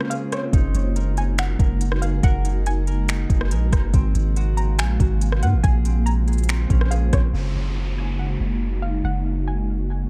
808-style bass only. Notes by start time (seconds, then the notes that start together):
0.53 F#1
0.74 F#1
1.59 F#1
2.23 F#1
3.30 F#1
3.51 A#1
3.73 F#1
3.94 G#1
4.15 G#1
4.79 A#1
5.00 G#1
5.43 G#2
5.53 G#1
5.64 A#1
6.70 A#1
7.13 A#1
7.34 F#1
7.55 F#1
8.40 F#1
9.04 F#1